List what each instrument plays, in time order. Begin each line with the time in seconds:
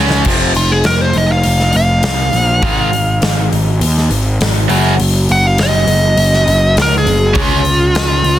Already playing: picked electric bass C#2, distorted electric guitar C#3 G#3 C#4
0.10 snare
0.25 picked electric bass F1, distorted electric guitar F2 C3 F3, kick, crash
0.55 picked electric bass F1, lead electric guitar F4, open hi-hat
0.71 lead electric guitar G#4
0.84 picked electric bass F1, lead electric guitar A#4, snare, open hi-hat
1.01 lead electric guitar C5
1.13 picked electric bass F1, open hi-hat
1.18 lead electric guitar D#5
1.32 lead electric guitar F5
1.44 picked electric bass F1, open hi-hat
1.60 snare
1.73 picked electric bass F1, lead electric guitar F5, open hi-hat
2.03 picked electric bass C2, snare, open hi-hat
2.33 picked electric bass A#1, open hi-hat
2.62 distorted electric guitar G#2 D#3 G#3, kick, open hi-hat
2.93 open hi-hat
3.22 picked electric bass G#1, snare, open hi-hat
3.52 picked electric bass G#1, open hi-hat
3.81 picked electric bass D#2, open hi-hat
3.98 snare
4.10 picked electric bass G#1, open hi-hat
4.41 picked electric bass G#1, snare, open hi-hat
4.69 picked electric bass F#1, distorted electric guitar F#2 C#3 F#3, open hi-hat
5.00 picked electric bass F#1, open hi-hat
5.29 picked electric bass F#1, lead electric guitar F#5, open hi-hat
5.47 lead electric guitar F5
5.58 snare, open hi-hat
5.63 lead electric guitar D#5
5.87 picked electric bass F#1, open hi-hat
6.17 picked electric bass F#1, open hi-hat
6.33 snare
6.47 picked electric bass F#1, open hi-hat
6.77 picked electric bass C#2, snare, open hi-hat
6.82 lead electric guitar A#4
6.98 lead electric guitar G#4
7.06 picked electric bass F#1, open hi-hat
7.34 picked electric bass C#2, distorted electric guitar C#3 G#3 C#4, kick, open hi-hat
7.42 lead electric guitar F4
7.65 open hi-hat
7.95 picked electric bass C#2, snare, open hi-hat
8.24 picked electric bass C#2, open hi-hat